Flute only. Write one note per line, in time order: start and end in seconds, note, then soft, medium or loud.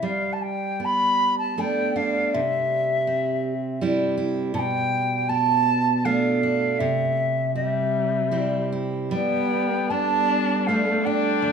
0.04 0.34 F5 medium
0.33 0.43 A5 medium
0.42 0.86 G5 medium
0.85 1.38 B5 medium
1.39 1.61 A5 medium
1.59 1.97 G5 medium
1.96 2.35 F5 medium
2.33 3.82 E5 medium
4.55 4.60 A5 medium
4.59 5.30 G5 loud
5.29 6.06 A5 medium
6.05 6.80 F5 medium
6.78 7.54 E5 medium
7.55 8.69 E5 medium
9.11 9.91 G5 medium
9.90 10.68 A5 loud
10.66 11.07 F5 medium
11.05 11.52 G5 medium